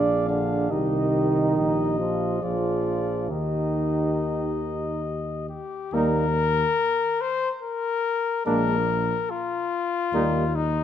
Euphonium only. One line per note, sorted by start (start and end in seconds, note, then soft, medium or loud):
0.00 0.29 D4 medium
0.28 0.71 D3 medium
0.69 1.98 D#3 medium
1.99 2.41 F3 medium
2.41 3.31 F3 medium
3.30 5.06 D#3 medium
5.94 6.25 G3 medium
8.45 8.77 G#3 medium
10.13 10.45 G3 medium